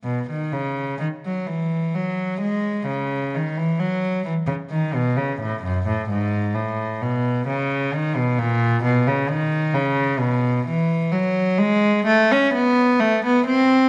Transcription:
\new Staff \with { instrumentName = "Cello" } { \clef bass \time 3/4 \key cis \minor \tempo 4 = 65 b,16 dis16 cis8 dis16 fis16 e8 fis8 gis8 | cis8 dis16 e16 fis8 e16 cis16 dis16 b,16 cis16 a,16 | fis,16 a,16 gis,8 a,8 b,8 cis8 dis16 b,16 | ais,8 b,16 cis16 dis8 cis8 b,8 e8 |
\key b \dorian fis8 gis8 a16 cis'16 b8 a16 b16 c'8 | }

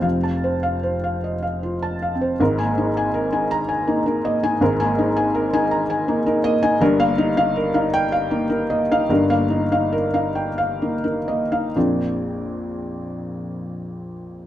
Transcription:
<<
  \new Staff \with { instrumentName = "Felt piano" } { \time 3/4 \key bes \major \tempo 4 = 77 <c'' f''>16 a''16 c''16 f''16 c''16 f''16 ees''16 f''16 f'16 a''16 f''16 c''16 | bes'16 aes''16 ees'16 aes''16 bes'16 aes''8 aes''16 ees'16 bes'16 ees''16 aes''16 | bes'16 aes''16 ees'16 aes''16 bes'16 aes''16 bes''16 aes''16 ees'16 bes'16 ees''16 aes''16 | bes'16 f''16 ees'16 f''16 bes'16 f''8 f''16 ees'16 bes'16 ees''16 f''16 |
bes'16 f''16 ees'16 f''16 bes'16 f''16 g''16 f''16 ees'16 bes'16 ees''16 f''16 | r2. | }
  \new Staff \with { instrumentName = "Felt piano" } { \time 3/4 \key bes \major << { r2. | r4. bes''16 r4 r16 | r2. | r4. g''16 r4 r16 |
r2. | <bes,, f, f bes c' d'>2. | } \\ { <f,, f, c'>2~ \tuplet 3/2 { <f,, f, c'>4 c'8 } | <aes,, aes,>16 bes8 r8 ees'8 r16 bes16 ees'16 bes16 ees'16 | <aes,, aes,>16 bes8 r8 ees'8 r16 bes16 ees'16 bes16 ees'16 | <g,, g,>16 bes8 ees'16 r16 ees'8 r16 bes16 ees'16 bes16 ees'16 |
<g,, g,>16 bes8 ees'16 r16 ees'8 r16 bes16 ees'16 bes16 ees'16 | r2. | } >> }
>>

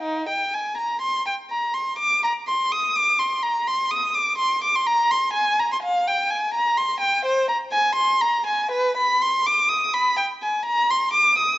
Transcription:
\new Staff \with { instrumentName = "Violin" } { \time 12/8 \key c \minor \tempo 4. = 83 ees'8 g''8 aes''8 bes''8 c'''8 g''8 bes''8 c'''8 d'''8 bes''8 c'''8 ees'''8 | d'''8 c'''8 bes''8 c'''8 ees'''8 d'''8 c'''8 d'''16 c'''16 bes''8 c'''8 aes''8 bes''16 c'''16 | f''8 g''8 aes''8 bes''8 c'''8 g''8 c''8 bes''8 aes''8 c'''8 bes''8 aes''8 | b'8 b''8 c'''8 d'''8 ees'''8 b''8 g''8 aes''8 bes''8 c'''8 d'''8 ees'''8 | }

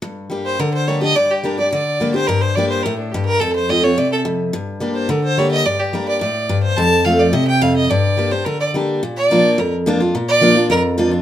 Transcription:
<<
  \new Staff \with { instrumentName = "Fiddle" } { \time 4/4 \key g \minor \tempo 4 = 214 r4. c''8 bes'8 c''8 cis''8 ees''8 | d''8 g'8 bes'8 d''8 d''4. c''8 | bes'8 c''8 d''8 c''8 bes'8 d'8 g'8 bes'8 | a'8 c''8 ees''8 cis''8 d''8 a'8 r4 |
r4. c''8 bes'8 c''8 cis''8 ees''8 | d''8 g'8 bes'8 d''8 d''4. c''8 | a''4 f''8 d''8 ees''8 g''8 f''8 ees''8 | d''4. c''8 bes'8 d''8 r4 |
r8 d''4. bes'8 r4. | r8 d''4. bes'8 r4. | }
  \new Staff \with { instrumentName = "Steel-string acoustic guitar" } { \time 4/4 \key g \minor << { r4 <g bes d' g'>4 r4 <g bes d' g'>8 <d' g'>8 | r4 <g bes d' g'>8 g'8 r4 <g bes d' g'>8 <d' g'>8 | r4 <g bes d' g'>4 r2 | r4 <f a c' f'>8 <c' f'>8 r2 |
r4 <g bes d' g'>4 r4 <g bes d' g'>4 | r4 <g bes d' g'>4 r2 | r4 <f a c' f'>4 r2 | r4 <g bes d' g'>8 <d' g'>8 r4 <g bes d' g'>4 |
r4 <f bes d' f'>4 r4 <f bes d' f'>8 <d' f'>8 | r4 <f bes d' f'>8 <d' f'>8 r4 <f bes d' f'>8 <d' f'>8 | } \\ { g,2 d2 | g,2 d2 | g,2 a,4 g,4 | f,2 c4 f,4 |
g,2 d2 | g,2 a,4 g,4 | f,2 c4 f,4 | g,2 d2 |
bes,2 f,2 | bes,2 f,2 | } >> }
>>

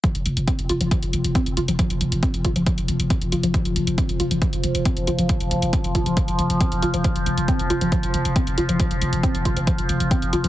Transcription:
<<
  \new Staff \with { instrumentName = "Synth arpeggio sound" } { \clef bass \time 4/4 \key c \phrygian \tempo 4 = 137 f16 r8. c'16 r16 f'16 f16 f16 r8. c'16 r16 f'16 f16 | f16 r8. c'16 r16 f'16 f16 f16 r8. c'16 r16 f'16 f16 | f16 r8. c'16 r16 f'16 f16 f16 r8. c'16 r16 f'16 f16 | f16 r8. c'16 r16 f'16 f16 f16 r8. c'16 r16 f'16 f16 |
f16 r8. c'16 r16 f'16 f16 f16 r8. c'16 r16 f'16 f16 | f16 r8. c'16 r16 f'16 f16 f16 r8. c'16 r16 f'16 f16 | }
  \new Staff \with { instrumentName = "Synth drone" } { \clef bass \time 4/4 \key c \phrygian f1~ | f1~ | f1~ | f1~ |
f1~ | f1 | }
  \new Staff \with { instrumentName = "808-style bass" } { \clef bass \time 4/4 \key c \phrygian r16 f,,16 f,,16 f,,16 r16 f,,16 f,,16 f,,16 r16 f,,16 f,,16 f,,16 r16 f,,16 f,,16 f,,16 | r16 f,,16 f,,16 f,,16 r16 f,,16 f,,16 f,,16 r16 f,,16 f,,16 f,,16 r16 f,,16 f,,16 f,,16 | r16 f,,16 f,,16 f,,16 r16 f,,16 f,,16 f,,16 r16 f,,16 f,,16 f,,16 r16 f,,16 f,,16 f,,16 | r16 f,,16 f,,16 f,,16 r16 f,,16 f,,16 f,,16 r16 f,,16 f,,16 f,,16 r16 f,,16 f,,16 f,,16 |
r16 f,,16 f,,16 f,,16 r16 f,,16 f,,16 f,,16 r16 f,,16 f,,16 f,,16 r16 f,,16 f,,16 f,,16 | r16 f,,16 f,,16 f,,16 r16 f,,16 f,,16 f,,16 r16 f,,16 f,,16 f,,16 r16 f,,16 f,,16 f,,16 | }
  \new DrumStaff \with { instrumentName = "Drums" } \drummode { \time 4/4 <hh bd>16 hh16 hh16 hh16 <hh bd>16 hh16 hh16 hh16 <hh bd>16 hh16 hh16 hh16 <hh bd>16 hh16 hh16 hh16 | <hh bd>16 hh16 hh16 hh16 <hh bd>16 hh16 <hh bd>16 hh16 <hh bd>16 hh16 hh16 hh16 <hh bd>16 hh16 hh16 hh16 | <hh bd>16 hh16 hh16 hh16 <hh bd>16 hh16 hh16 hh16 <hh bd>16 hh16 hh16 hh16 <hh bd>16 hh16 hh16 hh16 | <hh bd>16 hh16 hh16 hh16 <hh bd>16 hh16 <hh bd>16 hh16 <hh bd>16 hh16 hh16 hh16 <hh bd>16 hh16 hh16 hh16 |
<hh bd>16 hh16 hh16 hh16 <hh bd>16 hh16 hh16 hh16 <hh bd>16 hh16 hh16 hh16 <hh bd>16 hh16 hh16 hh16 | <hh bd>16 hh16 hh16 hh16 <hh bd>16 hh16 <hh bd>16 hh16 <hh bd>16 hh16 hh16 hh16 <hh bd>16 hh16 hh16 hh16 | }
>>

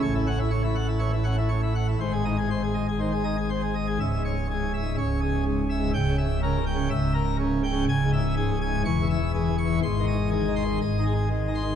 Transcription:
<<
  \new Staff \with { instrumentName = "Pipe organ" } { \time 4/4 \key cis \minor \tempo 4 = 123 cis''16 e'16 fis''16 e'16 cis''16 e'16 fis''16 e'16 cis''16 e'16 fis''16 e'16 cis''16 e'16 fis''16 e'16 | bis'16 gis'16 dis''16 gis'16 bis'16 gis'16 dis''16 gis'16 bis'16 gis'16 dis''16 gis'16 bis'16 gis'16 dis''16 gis'16 | e''8 cis''8 gis'8 e''8 cis''8 gis'8 gis,8 e''8 | g''8 e''8 ais'8 g''8 e''8 ais'8 r8 g''8 |
gis''8 e''8 gis'8 gis''8 cis'''8 e''8 gis'8 cis'''8 | bis''8 dis''8 gis'8 bis''8 dis''8 gis'8 r8 bis''8 | }
  \new Staff \with { instrumentName = "Pipe organ" } { \clef bass \time 4/4 \key cis \minor << { a,8 cis'16 r4 r16 e16 r16 cis'16 r4 r16 | gis,8 dis'16 r4 r16 dis16 r16 dis'16 r4 r16 | \tuplet 3/2 { cis,8 gis,8 r8 gis,8 r8 gis,8 } cis,4~ \tuplet 3/2 { cis,4 gis,8 } | \tuplet 3/2 { cis,8 cis8 r8 cis8 r8 cis8 } cis,4 \tuplet 3/2 { cis8 r8 cis8 } |
\tuplet 3/2 { cis,8 gis,8 r8 gis,8 r8 gis,8 e,8 e8 r8 e8 r8 e8 } | \tuplet 3/2 { gis,8 dis8 r8 dis8 dis'8 dis8 gis,8 dis'8 r8 dis8 dis'8 dis8 } | } \\ { a,,1 | gis,,1 | cis,,2 cis,,2 | cis,,2 cis,,2 |
cis,,2 e,,2 | gis,,2 gis,,2 | } >> }
>>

